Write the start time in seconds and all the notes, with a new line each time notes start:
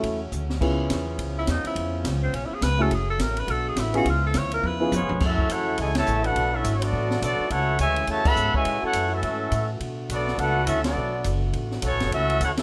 Already playing: C#3 F#3 A3 C#4 E4 F#4 A4
0.03 E2, kick, ride
0.32 D2, hi-hat pedal
0.50 snare
0.61 C#2 C#3 F3 B3 C#4 E4 F4 G#4, kick, crash
0.90 E2, kick, snare, hi-hat pedal, ride
1.19 C#2, kick, ride
1.39 E4
1.47 E2 D#4, kick, snare, hi-hat pedal, ride
1.65 E4, muted upright bass stroke, ride
1.75 F2, kick, ride
2.04 C#2, kick, snare, hi-hat pedal, ride
2.23 C4
2.33 B1 C#4, kick, ride
2.45 E4
2.51 G#4, muted upright bass stroke
2.61 C#2 B4, kick, snare, hi-hat pedal, ride
2.79 A3 C#4 E4 F#4 G#4 A4
2.90 F#1 F#3 A3 G#4, kick, ride
3.10 A4
3.19 A1 A#4, kick, snare, hi-hat pedal, ride
3.37 B4, ride
3.44 B1 D3 B3 F#4, kick, ride
3.51 A4
3.68 G#4
3.76 A1 E4, kick, snare, hi-hat pedal, ride
3.93 B3 C#4 E4 F4 F#4 G#4, ride
4.04 C#2 C#3 F3 E4, kick, ride
4.10 F4
4.26 A4
4.34 D2, kick, snare, hi-hat pedal, ride
4.38 C#5
4.52 A#4, ride
4.63 E2 B4, high tom
4.79 B3 C#4 E4 F4 G#4
4.91 F2 F3 G#3 B3 C#4 F4 G#4 C#5, hi-hat pedal, high tom
5.02 C#2
5.09 B1, floor tom
5.20 F#2 C#3 F#3 A3 C#4 E4 F#4 A4 E5, kick, snare, crash
5.39 kick
5.49 E2 A3 C#4 E4 F#4 A4 C#5 F#5, kick, hi-hat pedal, ride
5.78 C#2 G#3 E4 A4 C#5 G#5, kick, ride
5.94 C#3 E3 A3 F#4 C#5 E5 A5, snare, ride
6.07 A1, hi-hat pedal
6.23 A3 D4 F#4 A4 B4 F#5, ride
6.36 B1 D3 B3 F#4, kick, ride
6.53 C#4 E4 F#4 A4 E5
6.64 G#1, kick, hi-hat pedal, ride
6.76 F#3 A3 C#5
6.80 B3 D4 F#4 A4 D5, ride
6.93 A1, kick
7.11 snare
7.20 B1 F#3 A3 B3 D4 F#4 A4 D5, kick, hi-hat pedal, ride
7.39 muted upright bass stroke
7.48 C#2 E3 A3 C#4 E4 F#4 A4 F#5, kick, ride
7.52 C#5
7.78 D2 C#3 E3 G#3 F#4 C#5 E5 G#5, kick, hi-hat pedal, ride
7.96 ride
8.06 E2 C#3 E3 A3 F#4 C#5 E5 A5, kick, ride
8.23 C#3 E3 B3 A4 E5 F#5 B5, kick, crash
8.36 G#2, hi-hat pedal
8.53 C#3 E3 G#3 F#4 C#5 E5 G#5, muted upright bass stroke, kick
8.65 A2, kick, ride
8.80 A3 C#4 F#4 A4, muted upright bass stroke
8.84 E4 C#5 F#5
8.93 F#2, kick, hi-hat pedal, ride
9.09 A3 C#4 E4
9.14 C#4 F#4 A4 E5
9.23 G#2, kick, ride
9.52 A2, kick, hi-hat pedal, ride
9.80 B2 D3 B3, kick, ride
10.08 B1 F#3 A3 B3 D4 F#4 A4 D5, kick, hi-hat pedal, ride
10.28 snare
10.38 C#2 A3 D4 F#4 A4 B4 F#5, kick, ride
10.65 D2 C#4 E4 F#4 A4 E5, kick, hi-hat pedal, ride
10.82 F#3 A3 B3 D4 F#4 A4 D5, snare, ride
10.95 B1
11.24 F#1, kick, hi-hat pedal, ride
11.53 A1, kick, ride
11.71 snare
11.82 B1 F#3 A3 B3 C#4 F#4 A4 C#5, kick, hi-hat pedal, ride
11.92 A1
12.00 F#1, snare, ride
12.11 C#2 E3 A3 C#4 E4 F#4 A4 E5, kick, ride
12.30 ride
12.40 D2 A3 C#4 E4 F#4 A4 C#5 F#5, kick, hi-hat pedal, ride
12.57 A3 C#4 E4 F#4 A4 E5, snare, ride